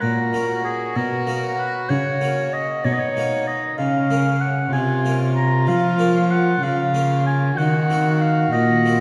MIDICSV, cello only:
0, 0, Header, 1, 2, 480
1, 0, Start_track
1, 0, Tempo, 630915
1, 14, Time_signature, 12, 3, 24, 8
1, 6849, End_track
2, 0, Start_track
2, 0, Title_t, "Cello"
2, 0, Program_c, 0, 42
2, 18, Note_on_c, 0, 46, 55
2, 701, Note_off_c, 0, 46, 0
2, 729, Note_on_c, 0, 47, 54
2, 1416, Note_off_c, 0, 47, 0
2, 1446, Note_on_c, 0, 49, 59
2, 2136, Note_off_c, 0, 49, 0
2, 2165, Note_on_c, 0, 47, 61
2, 2847, Note_off_c, 0, 47, 0
2, 2877, Note_on_c, 0, 49, 58
2, 3567, Note_off_c, 0, 49, 0
2, 3603, Note_on_c, 0, 48, 60
2, 4322, Note_on_c, 0, 53, 63
2, 4333, Note_off_c, 0, 48, 0
2, 5039, Note_off_c, 0, 53, 0
2, 5044, Note_on_c, 0, 49, 61
2, 5753, Note_off_c, 0, 49, 0
2, 5766, Note_on_c, 0, 51, 66
2, 6474, Note_off_c, 0, 51, 0
2, 6487, Note_on_c, 0, 46, 65
2, 6849, Note_off_c, 0, 46, 0
2, 6849, End_track
0, 0, End_of_file